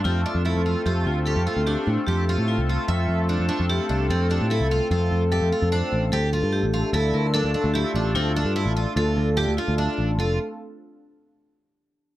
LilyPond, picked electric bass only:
\new Staff \with { instrumentName = "Picked electric bass" } { \clef bass \time 5/4 \key f \major \tempo 4 = 148 f,8 r16 f,8 f,8 r16 f,8 d,8. f,16 r16 d,8 r16 a,16 r16 | f,8. a,8 c,8 r16 f,8 f,8. f,16 r16 f,8 r16 c,8 | f,8. a,8 c,8 r16 f,8 f,8. f,16 r16 f,8 r16 a,,8 | d,8. g,8 a,,8 r16 d,8 d,8. d,16 r16 d,8 r16 a,,8 |
d,8. g,8 a,,8 r16 d,8 d,8. d,16 r16 d,8 r16 a,,8 | f,,8 r1 r8 | }